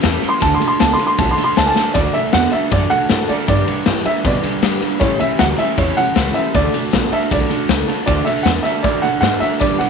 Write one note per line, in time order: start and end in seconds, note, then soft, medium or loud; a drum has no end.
0.02 0.23 E2 medium
0.02 0.22 A2 medium
0.02 0.21 A2 medium
0.02 0.22 E3 loud
0.02 0.21 E3 medium
0.02 0.22 G3 medium
0.02 0.22 C#4 loud
0.02 0.21 G4 loud
0.02 0.20 A4 loud
0.02 snare loud
0.02 ride medium
0.21 0.40 A2 medium
0.21 0.40 E3 medium
0.21 0.41 G3 soft
0.21 0.41 C#4 soft
0.21 0.42 G4 medium
0.21 0.41 A4 medium
0.21 muted upright bass stroke medium
0.21 ride medium
0.29 0.42 C6 loud
0.41 0.60 D2 medium
0.41 0.61 D3 medium
0.41 0.59 D3 medium
0.41 0.61 A3 loud
0.41 0.59 A3 loud
0.41 0.61 D4 loud
0.41 0.60 F#4 medium
0.41 0.59 A4 loud
0.41 0.54 A5 loud
0.41 kick loud
0.41 ride medium
0.54 0.66 C6 medium
0.60 0.78 D3 medium
0.60 0.78 A3 medium
0.60 0.79 D4 medium
0.60 0.80 F#4 medium
0.60 0.80 A4 medium
0.60 ride medium
0.67 0.80 C6 medium
0.79 0.99 C#2 loud
0.79 0.99 D3 medium
0.79 0.97 D3 medium
0.79 0.99 A3 medium
0.79 0.98 B3 medium
0.79 1.00 D4 medium
0.79 0.99 F#4 loud
0.79 0.98 A4 medium
0.79 0.93 A5 loud
0.79 snare loud
0.79 ride medium
0.93 1.05 C6 loud
0.99 1.17 D3 medium
0.99 1.17 A3 medium
0.99 1.18 D4 medium
0.99 1.19 F#4 medium
0.99 1.18 A4 medium
0.99 ride medium
1.07 1.19 C6 loud
1.18 1.37 B1 loud
1.18 1.36 D3 medium
1.18 1.38 A3 medium
1.18 1.36 A3 loud
1.18 1.38 D4 medium
1.18 1.38 F#4 medium
1.18 1.36 A4 medium
1.18 1.31 A5 medium
1.18 kick loud
1.18 ride loud
1.31 1.43 C6 medium
1.38 1.55 D3 medium
1.38 1.55 A3 medium
1.38 1.57 D4 soft
1.38 1.57 F#4 medium
1.38 1.57 A4 medium
1.38 muted upright bass stroke medium
1.38 ride medium
1.44 1.57 C6 loud
1.57 1.76 C#2 medium
1.57 1.74 D3 medium
1.57 1.76 D3 medium
1.57 1.74 A3 medium
1.57 1.76 A3 medium
1.57 1.77 D4 medium
1.57 1.77 F#4 medium
1.57 1.75 A4 medium
1.57 1.68 A5 loud
1.57 snare loud
1.57 ride medium
1.66 1.68 G#5 medium
1.70 1.95 A5 loud
1.76 1.93 D3 medium
1.76 1.93 A3 medium
1.76 1.95 D4 soft
1.76 1.96 F#4 medium
1.76 1.95 A4 medium
1.76 muted upright bass stroke medium
1.76 snare medium
1.94 2.13 D2 medium
1.94 2.14 D3 medium
1.94 2.13 D3 medium
1.94 2.15 A3 medium
1.94 2.13 A3 medium
1.94 2.15 D4 loud
1.94 2.14 F#4 medium
1.94 2.13 A4 loud
1.94 2.14 D5 loud
1.94 kick loud
1.94 ride medium
2.14 2.32 D3 medium
2.14 2.32 A3 medium
2.14 2.33 D4 soft
2.14 2.34 F#4 medium
2.14 2.33 A4 soft
2.14 2.34 E5 loud
2.14 ride medium
2.33 2.52 E2 medium
2.33 2.51 D3 medium
2.33 2.53 D3 medium
2.33 2.53 A3 medium
2.33 2.51 B3 medium
2.33 2.53 D4 medium
2.33 2.52 F#4 medium
2.33 2.50 A4 medium
2.33 2.51 F#5 loud
2.33 snare loud
2.33 ride medium
2.52 2.70 D3 medium
2.52 2.70 A3 medium
2.52 2.71 D4 soft
2.52 2.72 F#4 soft
2.52 2.71 A4 medium
2.52 2.70 E5 medium
2.52 muted upright bass stroke medium
2.52 ride medium
2.71 2.90 F#2 medium
2.71 2.89 D3 medium
2.71 2.90 A3 medium
2.71 2.89 A3 medium
2.71 2.91 D4 medium
2.71 2.90 F#4 medium
2.71 2.88 A4 medium
2.71 2.89 D5 medium
2.71 kick loud
2.71 ride medium
2.90 3.08 D3 medium
2.90 3.08 A3 medium
2.90 3.09 D4 soft
2.90 3.09 F#4 medium
2.90 3.09 A4 medium
2.90 3.30 F#5 loud
2.90 muted upright bass stroke medium
2.90 ride medium
3.09 3.29 A2 loud
3.09 3.28 D3 medium
3.09 3.27 D3 medium
3.09 3.29 A3 medium
3.09 3.27 A3 medium
3.09 3.29 D4 medium
3.09 3.29 F#4 loud
3.09 3.27 A4 medium
3.09 snare loud
3.09 ride medium
3.28 3.47 D3 medium
3.28 3.47 A3 loud
3.28 3.47 D4 soft
3.28 3.48 F#4 soft
3.28 3.48 A4 medium
3.28 3.34 D5 medium
3.28 muted upright bass stroke medium
3.28 ride medium
3.47 3.66 G2 medium
3.47 3.67 G2 medium
3.47 3.66 D3 medium
3.47 3.67 G3 medium
3.47 3.67 D4 loud
3.47 3.67 G4 loud
3.47 3.65 B4 loud
3.47 4.01 D5 loud
3.47 kick loud
3.47 ride medium
3.66 3.84 G2 medium
3.66 3.85 D3 medium
3.66 3.85 D4 soft
3.66 3.85 G4 soft
3.66 3.86 B4 medium
3.66 muted upright bass stroke medium
3.66 ride medium
3.85 4.03 G2 medium
3.85 4.05 A2 medium
3.85 4.04 E3 medium
3.85 4.05 G3 medium
3.85 4.05 D4 medium
3.85 4.05 G4 medium
3.85 4.04 B4 loud
3.85 snare loud
3.85 ride medium
4.05 4.23 G2 medium
4.05 4.23 D3 medium
4.05 4.23 D4 soft
4.05 4.24 G4 medium
4.05 4.24 B4 medium
4.05 4.25 E5 medium
4.05 muted upright bass stroke medium
4.05 ride medium
4.23 4.42 G2 medium
4.23 4.42 B2 medium
4.23 4.42 D3 medium
4.23 4.43 G3 medium
4.23 4.44 D4 medium
4.23 4.43 G4 medium
4.23 4.41 B4 medium
4.23 4.61 D5 medium
4.23 kick loud
4.23 ride medium
4.42 4.61 G2 medium
4.42 4.61 D3 medium
4.42 4.62 D4 medium
4.42 4.63 G4 medium
4.42 4.62 B4 medium
4.42 muted upright bass stroke medium
4.42 ride medium
4.62 4.80 G2 loud
4.62 4.80 G2 medium
4.62 4.80 D3 medium
4.62 4.82 G3 medium
4.62 4.82 D4 medium
4.62 4.82 G4 medium
4.62 4.80 B4 medium
4.62 snare loud
4.62 ride medium
4.81 4.99 G2 medium
4.81 4.99 D3 medium
4.81 5.01 D4 medium
4.81 5.01 G4 medium
4.81 5.01 B4 medium
4.81 muted upright bass stroke soft
4.81 ride medium
5.00 5.20 A2 loud
5.00 5.18 A2 medium
5.00 5.20 A2 medium
5.00 5.20 E3 medium
5.00 5.18 E3 medium
5.00 5.20 G3 medium
5.00 5.20 C#4 medium
5.00 5.19 G4 loud
5.00 5.18 A4 loud
5.00 5.18 C#5 loud
5.00 kick loud
5.00 ride medium
5.19 5.37 A2 medium
5.19 5.38 E3 medium
5.19 5.38 G3 soft
5.19 5.39 C#4 soft
5.19 5.39 G4 medium
5.19 5.39 A4 soft
5.19 5.40 E5 loud
5.19 muted upright bass stroke medium
5.19 ride medium
5.39 5.58 D2 medium
5.39 5.58 A2 medium
5.39 5.57 A2 medium
5.39 5.58 E3 medium
5.39 5.57 F#3 medium
5.39 5.59 G3 medium
5.39 5.58 C#4 medium
5.39 5.57 G4 medium
5.39 5.56 A4 medium
5.39 5.44 F#5 loud
5.39 snare loud
5.39 ride medium
5.57 5.76 A2 medium
5.57 5.76 E3 loud
5.57 5.75 G3 medium
5.57 5.77 C#4 soft
5.57 5.78 G4 medium
5.57 5.77 A4 medium
5.57 5.76 E5 loud
5.57 muted upright bass stroke medium
5.57 ride medium
5.77 5.96 E2 medium
5.77 5.95 A2 medium
5.77 5.95 E3 loud
5.77 5.96 G3 medium
5.77 5.97 C#4 medium
5.77 5.96 G4 medium
5.77 5.95 A4 medium
5.77 5.97 C#5 medium
5.77 kick loud
5.77 ride medium
5.96 6.14 A2 medium
5.96 6.14 E3 medium
5.96 6.15 G3 soft
5.96 6.15 C#4 medium
5.96 6.15 G4 medium
5.96 6.16 A4 medium
5.96 6.36 F#5 loud
5.96 muted upright bass stroke medium
5.96 ride medium
6.15 6.35 C#2 loud
6.15 6.35 A2 medium
6.15 6.34 A2 medium
6.15 6.35 E3 medium
6.15 6.34 E3 medium
6.15 6.35 G3 medium
6.15 6.35 C#4 medium
6.15 6.34 G4 medium
6.15 6.33 A4 medium
6.15 snare loud
6.15 ride medium
6.34 6.52 A2 medium
6.34 6.53 E3 medium
6.34 6.54 G3 soft
6.34 6.55 C#4 soft
6.34 6.54 G4 medium
6.34 6.54 A4 medium
6.34 6.52 E5 medium
6.34 ride medium
6.54 6.73 D2 medium
6.54 6.73 D3 medium
6.54 6.72 D3 medium
6.54 6.74 A3 loud
6.54 6.72 A3 loud
6.54 6.74 D4 loud
6.54 6.73 F#4 medium
6.54 6.71 A4 medium
6.54 7.08 D5 loud
6.54 kick loud
6.54 ride medium
6.72 6.91 D3 medium
6.72 6.91 A3 medium
6.72 6.91 D4 soft
6.72 6.91 F#4 medium
6.72 6.92 A4 medium
6.72 ride medium
6.91 7.11 A1 loud
6.91 7.11 D3 medium
6.91 7.10 D3 medium
6.91 7.11 A3 medium
6.91 7.10 B3 medium
6.91 7.12 D4 medium
6.91 7.11 F#4 medium
6.91 7.09 A4 medium
6.91 snare loud
6.91 ride medium
7.10 7.29 D3 medium
7.10 7.29 A3 medium
7.10 7.29 D4 soft
7.10 7.30 F#4 soft
7.10 7.30 A4 medium
7.10 7.30 E5 medium
7.10 muted upright bass stroke medium
7.10 ride medium
7.29 7.50 B1 medium
7.29 7.48 D3 medium
7.29 7.49 A3 medium
7.29 7.48 A3 medium
7.29 7.50 D4 medium
7.29 7.49 F#4 medium
7.29 7.47 A4 medium
7.29 7.67 D5 medium
7.29 kick loud
7.29 ride loud
7.49 7.67 D3 medium
7.49 7.67 A3 medium
7.49 7.68 D4 soft
7.49 7.69 F#4 medium
7.49 7.69 A4 medium
7.49 muted upright bass stroke medium
7.49 ride medium
7.68 7.88 C#2 medium
7.68 7.88 D3 medium
7.68 7.87 D3 medium
7.68 7.88 A3 medium
7.68 7.87 A3 medium
7.68 7.89 D4 medium
7.68 7.88 F#4 medium
7.68 7.86 A4 medium
7.68 snare loud
7.68 ride medium
7.87 8.05 D3 medium
7.87 8.06 A3 medium
7.87 8.06 D4 soft
7.87 8.07 F#4 medium
7.87 8.07 A4 medium
7.87 ride medium
8.06 8.25 D2 medium
8.06 8.26 D3 medium
8.06 8.24 D3 medium
8.06 8.26 A3 medium
8.06 8.25 A3 medium
8.06 8.27 D4 medium
8.06 8.26 F#4 medium
8.06 8.25 A4 loud
8.06 8.25 D5 medium
8.06 kick loud
8.06 ride medium
8.25 8.44 D3 medium
8.25 8.44 A3 medium
8.25 8.45 F#4 soft
8.25 8.45 A4 soft
8.25 8.46 E5 medium
8.25 ride medium
8.29 8.45 D4 soft
8.43 8.64 E2 medium
8.43 8.65 D3 medium
8.43 8.63 D3 medium
8.43 8.65 A3 medium
8.43 8.63 B3 medium
8.43 8.65 D4 medium
8.43 8.65 F#4 medium
8.43 8.63 A4 medium
8.43 8.48 F#5 medium
8.43 snare loud
8.43 ride medium
8.63 8.82 D3 medium
8.63 8.83 A3 medium
8.63 8.85 F#4 medium
8.63 8.84 A4 medium
8.63 8.84 E5 medium
8.63 muted upright bass stroke medium
8.63 ride medium
8.67 8.84 D4 soft
8.83 9.02 F#2 medium
8.83 9.02 D3 medium
8.83 9.03 A3 medium
8.83 9.02 A3 loud
8.83 9.04 D4 medium
8.83 9.03 F#4 medium
8.83 9.02 A4 medium
8.83 9.03 D5 medium
8.83 kick loud
8.83 ride medium
9.02 9.21 D3 medium
9.02 9.21 A3 medium
9.02 9.22 D4 soft
9.02 9.22 F#4 medium
9.02 9.22 A4 medium
9.02 9.19 F#5 loud
9.02 muted upright bass stroke soft
9.02 ride medium
9.21 9.40 G#2 loud
9.21 9.41 D3 medium
9.21 9.40 D3 medium
9.21 9.42 A3 medium
9.21 9.40 A3 medium
9.21 9.42 D4 medium
9.21 9.41 F#4 medium
9.21 9.39 A4 medium
9.21 9.41 F#5 loud
9.21 snare loud
9.21 ride medium
9.40 9.59 D3 medium
9.40 9.59 A3 medium
9.40 9.59 D4 soft
9.40 9.61 F#4 medium
9.40 9.60 A4 medium
9.40 9.61 E5 loud
9.40 muted upright bass stroke medium
9.40 ride medium
9.60 9.79 G2 medium
9.60 9.78 G2 medium
9.60 9.79 D3 medium
9.60 9.79 G3 loud
9.60 9.80 D4 loud
9.60 9.79 G4 medium
9.60 9.78 B4 loud
9.60 9.80 D5 loud
9.60 kick loud
9.60 ride medium
9.79 9.90 G2 medium
9.79 9.90 D3 medium
9.79 9.90 D4 soft
9.79 9.90 G4 soft
9.79 9.90 B4 medium
9.79 9.90 F#5 medium
9.79 muted upright bass stroke soft
9.79 ride medium